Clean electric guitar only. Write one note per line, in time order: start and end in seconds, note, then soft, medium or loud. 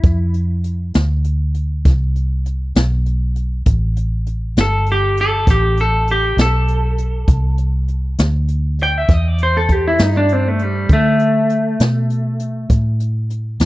0.00 0.33 E4 medium
4.61 4.88 A4 medium
4.92 5.19 G4 medium
5.21 5.48 A4 medium
5.51 5.78 G4 medium
5.81 6.08 A4 medium
6.11 6.39 G4 medium
6.41 7.57 A4 medium
8.83 8.98 G5 medium
8.98 9.13 E5 medium
9.13 9.28 D#5 medium
9.28 9.41 D5 medium
9.43 9.56 C5 medium
9.57 9.72 A4 medium
9.72 9.85 G4 medium
9.88 10.02 E4 medium
10.02 10.15 D#4 medium
10.17 10.33 D4 medium
10.33 10.48 C4 medium
10.48 10.63 A3 medium
10.63 10.90 G3 medium
10.93 12.68 A3 medium